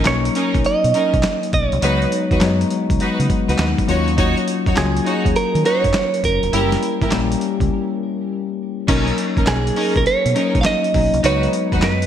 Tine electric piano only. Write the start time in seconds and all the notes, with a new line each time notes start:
Already playing: F#3 A#3 C#4 D#4
0.06 F#3 A#3 C#4 D#4
1.83 F#3 G#3 B3 D#4
2.41 F#3 G#3 B3 D#4
3.88 F#3 A#3 C#4 F4
4.77 F#3 A#3 C#4 F4
6.53 G3 A#3 C#4 E4
7.12 G3 A#3 C#4 G4
8.88 F#3 A#3 C#4 D#4
10.35 F#3 A#3 C#4 D#4
10.94 F#3 A#3 C#4 D#4
11.23 F#3 G#3 B3 D#4